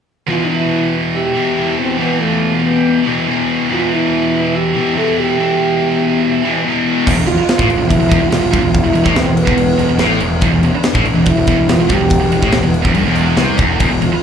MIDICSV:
0, 0, Header, 1, 8, 480
1, 0, Start_track
1, 0, Tempo, 422238
1, 341, Time_signature, 4, 2, 24, 8
1, 16176, End_track
2, 0, Start_track
2, 0, Title_t, "Lead electric guitar"
2, 0, Program_c, 0, 29
2, 316, Note_on_c, 0, 71, 75
2, 478, Note_off_c, 0, 71, 0
2, 493, Note_on_c, 0, 71, 54
2, 566, Note_off_c, 0, 71, 0
2, 580, Note_on_c, 0, 71, 80
2, 1064, Note_off_c, 0, 71, 0
2, 1311, Note_on_c, 0, 76, 79
2, 1987, Note_off_c, 0, 76, 0
2, 2014, Note_on_c, 0, 69, 70
2, 2246, Note_off_c, 0, 69, 0
2, 2272, Note_on_c, 0, 67, 71
2, 2519, Note_off_c, 0, 67, 0
2, 2519, Note_on_c, 0, 65, 62
2, 2914, Note_off_c, 0, 65, 0
2, 2928, Note_on_c, 0, 65, 51
2, 3033, Note_off_c, 0, 65, 0
2, 3033, Note_on_c, 0, 67, 57
2, 3495, Note_off_c, 0, 67, 0
2, 4233, Note_on_c, 0, 71, 72
2, 4439, Note_off_c, 0, 71, 0
2, 4462, Note_on_c, 0, 71, 70
2, 5175, Note_off_c, 0, 71, 0
2, 5175, Note_on_c, 0, 76, 71
2, 5611, Note_off_c, 0, 76, 0
2, 5625, Note_on_c, 0, 76, 82
2, 5854, Note_off_c, 0, 76, 0
2, 5893, Note_on_c, 0, 76, 74
2, 7516, Note_off_c, 0, 76, 0
2, 16176, End_track
3, 0, Start_track
3, 0, Title_t, "French horn"
3, 0, Program_c, 1, 60
3, 333, Note_on_c, 1, 65, 89
3, 520, Note_on_c, 1, 62, 70
3, 537, Note_off_c, 1, 65, 0
3, 608, Note_on_c, 1, 64, 86
3, 625, Note_off_c, 1, 62, 0
3, 1078, Note_off_c, 1, 64, 0
3, 1311, Note_on_c, 1, 67, 107
3, 1987, Note_off_c, 1, 67, 0
3, 2035, Note_on_c, 1, 60, 85
3, 2257, Note_off_c, 1, 60, 0
3, 2277, Note_on_c, 1, 59, 87
3, 2503, Note_on_c, 1, 57, 73
3, 2520, Note_off_c, 1, 59, 0
3, 2909, Note_off_c, 1, 57, 0
3, 2917, Note_on_c, 1, 57, 54
3, 2982, Note_on_c, 1, 59, 80
3, 2999, Note_off_c, 1, 57, 0
3, 3469, Note_off_c, 1, 59, 0
3, 4238, Note_on_c, 1, 65, 82
3, 4468, Note_on_c, 1, 64, 85
3, 4485, Note_off_c, 1, 65, 0
3, 5190, Note_on_c, 1, 67, 108
3, 5207, Note_off_c, 1, 64, 0
3, 5649, Note_off_c, 1, 67, 0
3, 5656, Note_on_c, 1, 69, 81
3, 5870, Note_off_c, 1, 69, 0
3, 5901, Note_on_c, 1, 67, 101
3, 7520, Note_off_c, 1, 67, 0
3, 8263, Note_on_c, 1, 65, 107
3, 8956, Note_on_c, 1, 64, 109
3, 8973, Note_off_c, 1, 65, 0
3, 9421, Note_on_c, 1, 65, 97
3, 9439, Note_off_c, 1, 64, 0
3, 9910, Note_off_c, 1, 65, 0
3, 9910, Note_on_c, 1, 65, 101
3, 10035, Note_off_c, 1, 65, 0
3, 10035, Note_on_c, 1, 64, 101
3, 10413, Note_on_c, 1, 60, 94
3, 10430, Note_off_c, 1, 64, 0
3, 10655, Note_off_c, 1, 60, 0
3, 10661, Note_on_c, 1, 59, 88
3, 11571, Note_off_c, 1, 59, 0
3, 12117, Note_on_c, 1, 62, 79
3, 12779, Note_off_c, 1, 62, 0
3, 12841, Note_on_c, 1, 64, 107
3, 13299, Note_on_c, 1, 65, 95
3, 13316, Note_off_c, 1, 64, 0
3, 13556, Note_on_c, 1, 67, 108
3, 13573, Note_off_c, 1, 65, 0
3, 14505, Note_off_c, 1, 67, 0
3, 15953, Note_on_c, 1, 65, 71
3, 16176, Note_off_c, 1, 65, 0
3, 16176, End_track
4, 0, Start_track
4, 0, Title_t, "Distorted electric guitar"
4, 0, Program_c, 2, 30
4, 322, Note_on_c, 2, 40, 79
4, 337, Note_on_c, 2, 47, 83
4, 350, Note_on_c, 2, 52, 82
4, 1521, Note_off_c, 2, 52, 0
4, 1526, Note_on_c, 2, 52, 76
4, 1532, Note_off_c, 2, 47, 0
4, 1549, Note_on_c, 2, 47, 72
4, 1554, Note_off_c, 2, 40, 0
4, 1559, Note_on_c, 2, 40, 56
4, 1775, Note_off_c, 2, 47, 0
4, 1777, Note_off_c, 2, 40, 0
4, 1781, Note_on_c, 2, 40, 63
4, 1793, Note_on_c, 2, 47, 76
4, 1805, Note_off_c, 2, 52, 0
4, 1809, Note_on_c, 2, 52, 79
4, 2241, Note_off_c, 2, 40, 0
4, 2245, Note_on_c, 2, 40, 76
4, 2249, Note_off_c, 2, 47, 0
4, 2262, Note_on_c, 2, 47, 86
4, 2280, Note_off_c, 2, 52, 0
4, 2285, Note_on_c, 2, 52, 87
4, 3456, Note_off_c, 2, 47, 0
4, 3472, Note_off_c, 2, 52, 0
4, 3476, Note_on_c, 2, 52, 86
4, 3492, Note_on_c, 2, 47, 72
4, 3500, Note_off_c, 2, 40, 0
4, 3505, Note_on_c, 2, 40, 71
4, 3710, Note_off_c, 2, 47, 0
4, 3721, Note_off_c, 2, 40, 0
4, 3726, Note_on_c, 2, 40, 79
4, 3735, Note_on_c, 2, 47, 81
4, 3742, Note_off_c, 2, 52, 0
4, 3747, Note_on_c, 2, 52, 81
4, 4178, Note_off_c, 2, 40, 0
4, 4183, Note_on_c, 2, 40, 80
4, 4192, Note_off_c, 2, 47, 0
4, 4204, Note_on_c, 2, 47, 75
4, 4209, Note_off_c, 2, 52, 0
4, 4214, Note_on_c, 2, 52, 88
4, 5384, Note_off_c, 2, 52, 0
4, 5387, Note_off_c, 2, 47, 0
4, 5388, Note_on_c, 2, 52, 84
4, 5410, Note_on_c, 2, 47, 70
4, 5419, Note_off_c, 2, 40, 0
4, 5424, Note_on_c, 2, 40, 61
4, 5629, Note_off_c, 2, 47, 0
4, 5632, Note_off_c, 2, 40, 0
4, 5636, Note_on_c, 2, 40, 76
4, 5658, Note_on_c, 2, 47, 93
4, 5669, Note_off_c, 2, 52, 0
4, 5673, Note_on_c, 2, 52, 89
4, 6104, Note_off_c, 2, 40, 0
4, 6109, Note_on_c, 2, 40, 79
4, 6113, Note_off_c, 2, 47, 0
4, 6126, Note_on_c, 2, 47, 95
4, 6137, Note_off_c, 2, 52, 0
4, 6141, Note_on_c, 2, 52, 81
4, 7296, Note_off_c, 2, 40, 0
4, 7304, Note_off_c, 2, 47, 0
4, 7312, Note_off_c, 2, 52, 0
4, 7327, Note_on_c, 2, 52, 72
4, 7336, Note_on_c, 2, 47, 66
4, 7353, Note_on_c, 2, 40, 64
4, 7545, Note_off_c, 2, 52, 0
4, 7549, Note_off_c, 2, 40, 0
4, 7550, Note_off_c, 2, 47, 0
4, 7563, Note_on_c, 2, 40, 76
4, 7577, Note_on_c, 2, 47, 85
4, 7585, Note_on_c, 2, 52, 80
4, 8015, Note_off_c, 2, 40, 0
4, 8028, Note_on_c, 2, 40, 100
4, 8029, Note_off_c, 2, 47, 0
4, 8033, Note_off_c, 2, 52, 0
4, 8139, Note_off_c, 2, 40, 0
4, 8152, Note_on_c, 2, 40, 76
4, 8261, Note_off_c, 2, 40, 0
4, 8275, Note_on_c, 2, 40, 70
4, 8388, Note_off_c, 2, 40, 0
4, 8633, Note_on_c, 2, 45, 91
4, 8743, Note_off_c, 2, 45, 0
4, 8751, Note_on_c, 2, 40, 86
4, 8869, Note_off_c, 2, 40, 0
4, 8882, Note_on_c, 2, 40, 69
4, 8973, Note_off_c, 2, 40, 0
4, 8986, Note_on_c, 2, 40, 76
4, 9100, Note_off_c, 2, 40, 0
4, 9114, Note_on_c, 2, 40, 69
4, 9209, Note_off_c, 2, 40, 0
4, 9222, Note_on_c, 2, 40, 99
4, 9336, Note_off_c, 2, 40, 0
4, 9348, Note_on_c, 2, 40, 85
4, 9446, Note_off_c, 2, 40, 0
4, 9459, Note_on_c, 2, 40, 77
4, 9572, Note_off_c, 2, 40, 0
4, 9585, Note_on_c, 2, 40, 74
4, 9686, Note_off_c, 2, 40, 0
4, 9690, Note_on_c, 2, 43, 113
4, 9808, Note_off_c, 2, 43, 0
4, 9813, Note_on_c, 2, 40, 57
4, 10009, Note_off_c, 2, 40, 0
4, 10047, Note_on_c, 2, 40, 79
4, 10160, Note_off_c, 2, 40, 0
4, 10174, Note_on_c, 2, 40, 69
4, 10292, Note_on_c, 2, 45, 116
4, 10297, Note_off_c, 2, 40, 0
4, 10409, Note_off_c, 2, 45, 0
4, 10414, Note_on_c, 2, 40, 71
4, 10518, Note_off_c, 2, 40, 0
4, 10531, Note_on_c, 2, 40, 63
4, 10727, Note_off_c, 2, 40, 0
4, 10763, Note_on_c, 2, 40, 96
4, 10880, Note_off_c, 2, 40, 0
4, 10894, Note_on_c, 2, 40, 75
4, 11087, Note_off_c, 2, 40, 0
4, 11128, Note_on_c, 2, 40, 69
4, 11237, Note_off_c, 2, 40, 0
4, 11251, Note_on_c, 2, 40, 78
4, 11353, Note_on_c, 2, 45, 116
4, 11373, Note_off_c, 2, 40, 0
4, 11597, Note_off_c, 2, 45, 0
4, 11602, Note_on_c, 2, 40, 79
4, 11800, Note_off_c, 2, 40, 0
4, 11832, Note_on_c, 2, 40, 114
4, 11936, Note_off_c, 2, 40, 0
4, 11950, Note_on_c, 2, 40, 83
4, 12053, Note_off_c, 2, 40, 0
4, 12067, Note_on_c, 2, 40, 72
4, 12187, Note_off_c, 2, 40, 0
4, 12429, Note_on_c, 2, 45, 102
4, 12552, Note_on_c, 2, 40, 86
4, 12554, Note_off_c, 2, 45, 0
4, 12653, Note_off_c, 2, 40, 0
4, 12666, Note_on_c, 2, 40, 71
4, 12772, Note_off_c, 2, 40, 0
4, 12785, Note_on_c, 2, 40, 81
4, 12892, Note_off_c, 2, 40, 0
4, 12906, Note_on_c, 2, 40, 78
4, 13021, Note_off_c, 2, 40, 0
4, 13035, Note_on_c, 2, 40, 99
4, 13141, Note_off_c, 2, 40, 0
4, 13155, Note_on_c, 2, 40, 83
4, 13262, Note_off_c, 2, 40, 0
4, 13275, Note_on_c, 2, 40, 83
4, 13392, Note_off_c, 2, 40, 0
4, 13406, Note_on_c, 2, 40, 82
4, 13501, Note_off_c, 2, 40, 0
4, 13505, Note_on_c, 2, 43, 120
4, 13629, Note_off_c, 2, 43, 0
4, 13633, Note_on_c, 2, 40, 71
4, 13835, Note_off_c, 2, 40, 0
4, 13878, Note_on_c, 2, 40, 79
4, 14001, Note_off_c, 2, 40, 0
4, 14014, Note_on_c, 2, 40, 71
4, 14134, Note_off_c, 2, 40, 0
4, 14142, Note_on_c, 2, 45, 105
4, 14250, Note_off_c, 2, 45, 0
4, 14263, Note_on_c, 2, 40, 73
4, 14371, Note_off_c, 2, 40, 0
4, 14385, Note_on_c, 2, 40, 65
4, 14571, Note_off_c, 2, 40, 0
4, 14628, Note_on_c, 2, 40, 81
4, 14725, Note_off_c, 2, 40, 0
4, 14730, Note_on_c, 2, 43, 106
4, 14845, Note_off_c, 2, 43, 0
4, 14856, Note_on_c, 2, 40, 108
4, 15205, Note_on_c, 2, 48, 105
4, 15208, Note_off_c, 2, 40, 0
4, 15442, Note_off_c, 2, 48, 0
4, 15453, Note_on_c, 2, 40, 102
4, 15672, Note_off_c, 2, 40, 0
4, 15686, Note_on_c, 2, 40, 97
4, 15803, Note_off_c, 2, 40, 0
4, 15818, Note_on_c, 2, 40, 82
4, 15926, Note_off_c, 2, 40, 0
4, 15939, Note_on_c, 2, 40, 69
4, 16057, Note_off_c, 2, 40, 0
4, 16176, End_track
5, 0, Start_track
5, 0, Title_t, "Picked electric bass"
5, 0, Program_c, 3, 34
5, 8040, Note_on_c, 3, 28, 100
5, 8147, Note_off_c, 3, 28, 0
5, 8157, Note_on_c, 3, 28, 85
5, 8265, Note_off_c, 3, 28, 0
5, 8275, Note_on_c, 3, 28, 76
5, 8381, Note_off_c, 3, 28, 0
5, 8631, Note_on_c, 3, 33, 94
5, 8732, Note_off_c, 3, 33, 0
5, 8738, Note_on_c, 3, 28, 80
5, 8850, Note_off_c, 3, 28, 0
5, 8857, Note_on_c, 3, 28, 82
5, 8973, Note_off_c, 3, 28, 0
5, 8987, Note_on_c, 3, 28, 91
5, 9092, Note_off_c, 3, 28, 0
5, 9099, Note_on_c, 3, 28, 78
5, 9213, Note_off_c, 3, 28, 0
5, 9223, Note_on_c, 3, 28, 92
5, 9336, Note_off_c, 3, 28, 0
5, 9341, Note_on_c, 3, 28, 86
5, 9449, Note_off_c, 3, 28, 0
5, 9456, Note_on_c, 3, 28, 80
5, 9560, Note_off_c, 3, 28, 0
5, 9567, Note_on_c, 3, 28, 75
5, 9686, Note_off_c, 3, 28, 0
5, 9703, Note_on_c, 3, 31, 92
5, 9799, Note_off_c, 3, 31, 0
5, 9806, Note_on_c, 3, 28, 72
5, 10036, Note_off_c, 3, 28, 0
5, 10055, Note_on_c, 3, 28, 78
5, 10153, Note_off_c, 3, 28, 0
5, 10160, Note_on_c, 3, 28, 69
5, 10281, Note_off_c, 3, 28, 0
5, 10297, Note_on_c, 3, 33, 103
5, 10395, Note_off_c, 3, 33, 0
5, 10402, Note_on_c, 3, 28, 74
5, 10515, Note_off_c, 3, 28, 0
5, 10522, Note_on_c, 3, 28, 76
5, 10752, Note_off_c, 3, 28, 0
5, 10773, Note_on_c, 3, 28, 99
5, 10871, Note_off_c, 3, 28, 0
5, 10877, Note_on_c, 3, 28, 79
5, 11109, Note_off_c, 3, 28, 0
5, 11124, Note_on_c, 3, 28, 84
5, 11234, Note_off_c, 3, 28, 0
5, 11241, Note_on_c, 3, 28, 87
5, 11348, Note_off_c, 3, 28, 0
5, 11355, Note_on_c, 3, 33, 93
5, 11588, Note_off_c, 3, 33, 0
5, 11604, Note_on_c, 3, 28, 85
5, 11832, Note_off_c, 3, 28, 0
5, 11850, Note_on_c, 3, 28, 93
5, 11951, Note_off_c, 3, 28, 0
5, 11958, Note_on_c, 3, 28, 84
5, 12074, Note_off_c, 3, 28, 0
5, 12081, Note_on_c, 3, 28, 74
5, 12199, Note_off_c, 3, 28, 0
5, 12444, Note_on_c, 3, 33, 103
5, 12557, Note_off_c, 3, 33, 0
5, 12564, Note_on_c, 3, 28, 93
5, 12680, Note_off_c, 3, 28, 0
5, 12686, Note_on_c, 3, 28, 83
5, 12801, Note_off_c, 3, 28, 0
5, 12808, Note_on_c, 3, 28, 89
5, 12920, Note_off_c, 3, 28, 0
5, 12926, Note_on_c, 3, 28, 88
5, 13039, Note_off_c, 3, 28, 0
5, 13045, Note_on_c, 3, 28, 94
5, 13157, Note_off_c, 3, 28, 0
5, 13164, Note_on_c, 3, 28, 93
5, 13280, Note_off_c, 3, 28, 0
5, 13285, Note_on_c, 3, 28, 80
5, 13397, Note_off_c, 3, 28, 0
5, 13404, Note_on_c, 3, 28, 74
5, 13520, Note_off_c, 3, 28, 0
5, 13527, Note_on_c, 3, 31, 95
5, 13631, Note_off_c, 3, 31, 0
5, 13638, Note_on_c, 3, 28, 74
5, 13868, Note_off_c, 3, 28, 0
5, 13894, Note_on_c, 3, 28, 87
5, 14005, Note_off_c, 3, 28, 0
5, 14011, Note_on_c, 3, 28, 80
5, 14119, Note_off_c, 3, 28, 0
5, 14126, Note_on_c, 3, 33, 100
5, 14241, Note_off_c, 3, 33, 0
5, 14254, Note_on_c, 3, 28, 80
5, 14352, Note_off_c, 3, 28, 0
5, 14358, Note_on_c, 3, 28, 83
5, 14589, Note_off_c, 3, 28, 0
5, 14606, Note_on_c, 3, 28, 99
5, 14721, Note_off_c, 3, 28, 0
5, 14727, Note_on_c, 3, 31, 97
5, 14834, Note_off_c, 3, 31, 0
5, 14841, Note_on_c, 3, 28, 99
5, 15182, Note_off_c, 3, 28, 0
5, 15205, Note_on_c, 3, 36, 91
5, 15433, Note_off_c, 3, 36, 0
5, 15448, Note_on_c, 3, 28, 90
5, 15675, Note_off_c, 3, 28, 0
5, 15696, Note_on_c, 3, 28, 94
5, 15800, Note_off_c, 3, 28, 0
5, 15807, Note_on_c, 3, 28, 72
5, 15922, Note_off_c, 3, 28, 0
5, 15939, Note_on_c, 3, 28, 70
5, 16038, Note_off_c, 3, 28, 0
5, 16176, End_track
6, 0, Start_track
6, 0, Title_t, "Muted distorted electric guitar strokes"
6, 8402, Note_on_c, 9, 29, 58
6, 8516, Note_off_c, 9, 29, 0
6, 12201, Note_on_c, 9, 29, 62
6, 12314, Note_off_c, 9, 29, 0
6, 16070, Note_on_c, 9, 29, 62
6, 16176, Note_off_c, 9, 29, 0
6, 16176, End_track
7, 0, Start_track
7, 0, Title_t, "Muted picked electric bass strokes"
7, 8388, Note_on_c, 9, 29, 44
7, 8501, Note_off_c, 9, 29, 0
7, 12209, Note_on_c, 9, 29, 41
7, 12323, Note_off_c, 9, 29, 0
7, 16045, Note_on_c, 9, 29, 44
7, 16158, Note_off_c, 9, 29, 0
7, 16176, End_track
8, 0, Start_track
8, 0, Title_t, "Drums"
8, 8038, Note_on_c, 9, 36, 109
8, 8042, Note_on_c, 9, 49, 127
8, 8042, Note_on_c, 9, 57, 92
8, 8152, Note_off_c, 9, 36, 0
8, 8156, Note_off_c, 9, 49, 0
8, 8156, Note_off_c, 9, 57, 0
8, 8272, Note_on_c, 9, 57, 61
8, 8386, Note_off_c, 9, 57, 0
8, 8510, Note_on_c, 9, 57, 82
8, 8516, Note_on_c, 9, 38, 108
8, 8623, Note_off_c, 9, 57, 0
8, 8630, Note_off_c, 9, 38, 0
8, 8630, Note_on_c, 9, 36, 105
8, 8744, Note_off_c, 9, 36, 0
8, 8749, Note_on_c, 9, 57, 66
8, 8863, Note_off_c, 9, 57, 0
8, 8986, Note_on_c, 9, 36, 100
8, 8992, Note_on_c, 9, 57, 89
8, 9100, Note_off_c, 9, 36, 0
8, 9106, Note_off_c, 9, 57, 0
8, 9226, Note_on_c, 9, 36, 108
8, 9231, Note_on_c, 9, 57, 68
8, 9339, Note_off_c, 9, 36, 0
8, 9344, Note_off_c, 9, 57, 0
8, 9458, Note_on_c, 9, 57, 93
8, 9465, Note_on_c, 9, 38, 112
8, 9572, Note_off_c, 9, 57, 0
8, 9579, Note_off_c, 9, 38, 0
8, 9703, Note_on_c, 9, 36, 104
8, 9703, Note_on_c, 9, 57, 70
8, 9816, Note_off_c, 9, 36, 0
8, 9817, Note_off_c, 9, 57, 0
8, 9942, Note_on_c, 9, 36, 115
8, 9942, Note_on_c, 9, 57, 81
8, 10055, Note_off_c, 9, 36, 0
8, 10056, Note_off_c, 9, 57, 0
8, 10176, Note_on_c, 9, 57, 64
8, 10290, Note_off_c, 9, 57, 0
8, 10296, Note_on_c, 9, 36, 117
8, 10410, Note_off_c, 9, 36, 0
8, 10411, Note_on_c, 9, 57, 78
8, 10418, Note_on_c, 9, 38, 113
8, 10525, Note_off_c, 9, 57, 0
8, 10532, Note_off_c, 9, 38, 0
8, 10651, Note_on_c, 9, 57, 68
8, 10765, Note_off_c, 9, 57, 0
8, 10769, Note_on_c, 9, 36, 93
8, 10883, Note_off_c, 9, 36, 0
8, 10884, Note_on_c, 9, 57, 89
8, 10998, Note_off_c, 9, 57, 0
8, 11128, Note_on_c, 9, 57, 61
8, 11242, Note_off_c, 9, 57, 0
8, 11354, Note_on_c, 9, 57, 75
8, 11360, Note_on_c, 9, 38, 108
8, 11467, Note_off_c, 9, 57, 0
8, 11474, Note_off_c, 9, 38, 0
8, 11600, Note_on_c, 9, 57, 63
8, 11713, Note_off_c, 9, 57, 0
8, 11838, Note_on_c, 9, 57, 77
8, 11846, Note_on_c, 9, 36, 114
8, 11952, Note_off_c, 9, 57, 0
8, 11960, Note_off_c, 9, 36, 0
8, 12082, Note_on_c, 9, 57, 62
8, 12195, Note_off_c, 9, 57, 0
8, 12315, Note_on_c, 9, 57, 84
8, 12322, Note_on_c, 9, 38, 108
8, 12429, Note_off_c, 9, 57, 0
8, 12436, Note_off_c, 9, 38, 0
8, 12448, Note_on_c, 9, 36, 99
8, 12562, Note_off_c, 9, 36, 0
8, 12566, Note_on_c, 9, 57, 67
8, 12679, Note_off_c, 9, 57, 0
8, 12796, Note_on_c, 9, 57, 87
8, 12806, Note_on_c, 9, 36, 104
8, 12909, Note_off_c, 9, 57, 0
8, 12920, Note_off_c, 9, 36, 0
8, 13037, Note_on_c, 9, 57, 63
8, 13047, Note_on_c, 9, 36, 99
8, 13151, Note_off_c, 9, 57, 0
8, 13160, Note_off_c, 9, 36, 0
8, 13288, Note_on_c, 9, 57, 93
8, 13295, Note_on_c, 9, 38, 112
8, 13402, Note_off_c, 9, 57, 0
8, 13409, Note_off_c, 9, 38, 0
8, 13518, Note_on_c, 9, 57, 68
8, 13527, Note_on_c, 9, 36, 112
8, 13632, Note_off_c, 9, 57, 0
8, 13640, Note_off_c, 9, 36, 0
8, 13755, Note_on_c, 9, 57, 96
8, 13766, Note_on_c, 9, 36, 103
8, 13868, Note_off_c, 9, 57, 0
8, 13880, Note_off_c, 9, 36, 0
8, 14002, Note_on_c, 9, 57, 65
8, 14116, Note_off_c, 9, 57, 0
8, 14125, Note_on_c, 9, 36, 107
8, 14233, Note_on_c, 9, 57, 82
8, 14239, Note_off_c, 9, 36, 0
8, 14240, Note_on_c, 9, 38, 117
8, 14347, Note_off_c, 9, 57, 0
8, 14353, Note_off_c, 9, 38, 0
8, 14481, Note_on_c, 9, 57, 64
8, 14595, Note_off_c, 9, 57, 0
8, 14607, Note_on_c, 9, 36, 105
8, 14716, Note_on_c, 9, 57, 77
8, 14721, Note_off_c, 9, 36, 0
8, 14829, Note_off_c, 9, 57, 0
8, 14953, Note_on_c, 9, 57, 64
8, 15067, Note_off_c, 9, 57, 0
8, 15196, Note_on_c, 9, 57, 81
8, 15203, Note_on_c, 9, 38, 108
8, 15309, Note_off_c, 9, 57, 0
8, 15316, Note_off_c, 9, 38, 0
8, 15435, Note_on_c, 9, 57, 64
8, 15449, Note_on_c, 9, 36, 116
8, 15548, Note_off_c, 9, 57, 0
8, 15562, Note_off_c, 9, 36, 0
8, 15684, Note_on_c, 9, 57, 88
8, 15692, Note_on_c, 9, 36, 116
8, 15798, Note_off_c, 9, 57, 0
8, 15806, Note_off_c, 9, 36, 0
8, 15935, Note_on_c, 9, 57, 58
8, 16049, Note_off_c, 9, 57, 0
8, 16176, End_track
0, 0, End_of_file